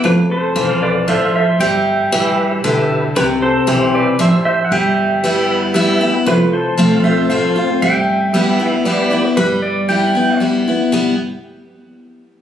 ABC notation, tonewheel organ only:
X:1
M:3/4
L:1/16
Q:1/4=116
K:Gmix
V:1 name="Tonewheel organ"
z4 [Acf]3 z [Acf]3 z | z4 [GBe]3 z [GBe]3 z | z4 [Gce]3 z [Gce]3 z | z4 [GBe]3 z [GBe]3 z |
z4 [Acf]3 z [Acf]3 z | z4 [GBe]3 z [GBd]3 z | z12 | z12 |]